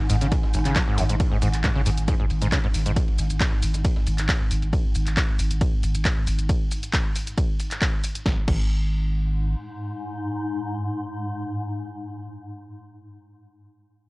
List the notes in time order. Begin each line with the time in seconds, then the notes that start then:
Already playing: G#2
0.10 G#1 G#2, open hi-hat, ride, shaker
0.21 G#1 C#3, snare, closed hi-hat, shaker
0.32 G#2, kick, closed hi-hat, ride, shaker
0.43 G#1, snare
0.54 G#1, open hi-hat, ride, shaker
0.65 G#1 C#3, clap, closed hi-hat, shaker
0.76 F#3, kick, snare, clap, closed hi-hat, ride, shaker
0.87 G#1 G#2
0.98 G#1 F#2, snare, open hi-hat, ride, shaker
1.09 G#1 G#2, closed hi-hat, shaker
1.20 kick, closed hi-hat, ride, shaker
1.32 G#1 G#2
1.42 G#1 G#2, snare, open hi-hat, ride, shaker
1.54 G#1, clap, closed hi-hat, shaker
1.64 G#2, kick, snare, clap, closed hi-hat, ride, shaker
1.76 G#1 C#3
1.86 G#1 G#2, open hi-hat, ride, shaker
1.98 G#1, closed hi-hat, shaker
2.08 G#2, kick, closed hi-hat, ride, shaker
2.20 G#1 G#2
2.30 G#1, open hi-hat, ride, shaker
2.42 G#1 G#2, snare, closed hi-hat, shaker
2.52 C#3, kick, snare, clap, closed hi-hat, ride, shaker
2.64 G#1 G#2, ride
2.74 G#1, open hi-hat, ride, shaker
2.86 G#1 G#2, closed hi-hat, shaker
2.96 kick, closed hi-hat, ride, shaker
3.08 G#1, ride
3.18 G#1, open hi-hat, ride, shaker
3.30 G#1, closed hi-hat, shaker
3.40 kick, snare, clap, closed hi-hat, ride, shaker
3.52 G#1, snare
3.63 G#1, open hi-hat, ride, shaker
3.74 G#1, snare, closed hi-hat, shaker
3.85 kick, closed hi-hat, ride, shaker
3.96 G#1, snare
4.07 G#1, open hi-hat, ride, shaker
4.18 G#1, clap, closed hi-hat, shaker
4.29 kick, snare, clap, closed hi-hat, ride, shaker
4.40 G#1
4.51 G#1, open hi-hat, ride, shaker
4.62 G#1, closed hi-hat, ride, shaker
4.73 kick, closed hi-hat, ride, shaker
4.85 G#1
4.95 G#1, open hi-hat, shaker
5.07 G#1, clap, closed hi-hat, shaker
5.17 kick, clap, closed hi-hat, ride, shaker
5.29 G#1
5.39 G#1, open hi-hat, shaker
5.51 G#1, closed hi-hat, shaker
5.61 kick, closed hi-hat, ride, shaker
5.73 G#1
5.83 G#1, open hi-hat, shaker
5.95 G#1, closed hi-hat, shaker
6.05 kick, clap, closed hi-hat, ride, shaker
6.17 G#1
6.27 G#1, open hi-hat, shaker
6.39 G#1, closed hi-hat, shaker
6.49 kick, closed hi-hat, ride, shaker
6.71 open hi-hat, shaker
6.83 closed hi-hat, shaker
6.93 kick, clap, closed hi-hat, ride, shaker
7.15 open hi-hat, shaker
7.27 closed hi-hat, shaker
7.38 kick, closed hi-hat, ride, shaker
7.60 open hi-hat, shaker
7.71 clap, closed hi-hat, shaker
7.82 kick, clap, closed hi-hat, ride, shaker
8.04 open hi-hat, shaker
8.15 closed hi-hat, shaker
8.26 G#1 G#2, kick, snare
8.48 G#1, kick, crash